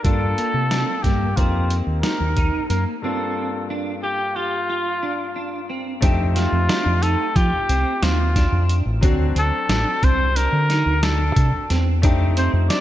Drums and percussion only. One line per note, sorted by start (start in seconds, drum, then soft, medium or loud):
0.05 kick loud
0.05 closed hi-hat medium
0.38 closed hi-hat medium
0.71 snare medium
0.71 closed hi-hat medium
1.04 kick medium
1.04 snare soft
1.04 closed hi-hat medium
1.37 kick loud
1.37 closed hi-hat medium
1.70 closed hi-hat medium
2.03 snare medium
2.03 closed hi-hat medium
2.37 kick medium
2.37 closed hi-hat medium
2.70 closed hi-hat medium
6.02 kick loud
6.02 closed hi-hat medium
6.36 snare soft
6.36 closed hi-hat medium
6.69 snare medium
6.69 closed hi-hat medium
7.03 closed hi-hat medium
7.36 kick medium
7.36 closed hi-hat medium
7.69 closed hi-hat medium
8.03 snare loud
8.03 closed hi-hat medium
8.36 kick medium
8.36 snare soft
8.36 closed hi-hat medium
8.69 closed hi-hat medium
9.03 kick loud
9.03 closed hi-hat medium
9.36 closed hi-hat soft
9.69 snare loud
9.69 closed hi-hat medium
10.03 kick medium
10.03 closed hi-hat medium
10.36 closed hi-hat medium
10.70 snare soft
10.70 closed hi-hat medium
11.03 snare medium
11.03 closed hi-hat medium
11.36 kick medium
11.36 closed hi-hat medium
11.70 snare soft
11.70 closed hi-hat medium
12.03 kick loud
12.03 closed hi-hat medium
12.37 closed hi-hat medium
12.70 snare medium
12.70 closed hi-hat medium